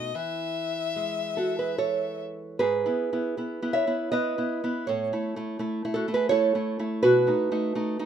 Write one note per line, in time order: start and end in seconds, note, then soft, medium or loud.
0.00 0.12 B2 medium
0.00 0.10 D#4 soft
0.00 0.17 D#5 soft
0.15 2.57 E3 soft
0.15 2.21 E5 medium
0.96 2.60 G#3 soft
1.37 1.57 F#4 soft
1.37 1.58 A4 medium
1.59 1.78 G#4 soft
1.59 1.78 B4 soft
1.78 2.56 A4 soft
1.78 2.57 C#5 medium
2.59 2.85 G#2 medium
2.59 3.70 G#4 medium
2.59 3.70 B4 medium
2.86 3.09 B3 soft
2.86 3.09 E4 soft
3.13 3.35 B3 soft
3.13 3.35 E4 soft
3.37 3.60 B3 soft
3.37 3.60 E4 soft
3.62 3.85 B3 soft
3.62 3.85 E4 medium
3.73 4.09 C#5 medium
3.73 4.10 E5 medium
3.87 4.10 B3 soft
3.87 4.10 E4 soft
4.12 4.35 B3 medium
4.12 4.35 E4 medium
4.12 4.83 B4 medium
4.12 4.84 D#5 medium
4.38 4.60 B3 soft
4.38 4.60 E4 soft
4.64 4.85 B3 soft
4.64 4.86 E4 soft
4.87 5.11 A2 medium
4.87 5.57 A4 soft
4.87 5.57 C#5 medium
5.13 5.34 A3 soft
5.13 5.34 E4 soft
5.36 5.58 A3 soft
5.36 5.58 E4 soft
5.59 5.81 A3 soft
5.59 5.81 E4 medium
5.85 6.06 A3 soft
5.85 6.06 E4 soft
5.94 6.08 F#4 medium
5.94 6.13 A4 medium
6.08 6.30 A3 soft
6.08 6.30 E4 soft
6.14 6.31 G#4 soft
6.14 6.29 B4 medium
6.29 6.53 A3 medium
6.29 6.53 E4 medium
6.29 7.01 A4 medium
6.29 7.01 C#5 medium
6.55 6.77 A3 soft
6.55 6.78 E4 medium
6.79 7.02 A3 soft
6.79 7.02 E4 medium
7.03 7.28 B2 medium
7.03 8.05 F#4 medium
7.03 8.05 B4 medium
7.27 7.50 A3 soft
7.27 7.50 D#4 medium
7.52 7.74 A3 soft
7.52 7.74 D#4 medium
7.75 7.97 A3 medium
7.75 7.98 D#4 medium
7.99 8.05 A3 medium
7.99 8.05 D#4 medium